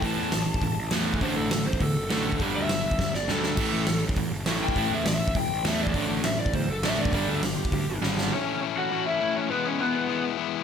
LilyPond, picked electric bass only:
\new Staff \with { instrumentName = "Picked electric bass" } { \clef bass \time 4/4 \key a \major \tempo 4 = 203 a,,8 e,8 a,,8 a,,8 e,,8 a,,8 e,4 | a,,8 a,,8 a,,8 a,,8 e,8 fis,,8 a,,8 a,,8 | g,,8 d,8 g,,8 g,,8 d,8 g,,8 d,4 | a,,8 a,,8 a,,8 a,,8 e,8 fis,,8 a,,8 a,,8 |
a,,8 e,8 a,,8 a,,8 e,,8 a,,8 e,4 | a,,8 a,,8 a,,8 a,,8 e,8 fis,,8 a,,8 a,,8 | g,,8 d,8 g,,8 g,,8 d,8 g,,8 gis,,4 | r1 |
r1 | }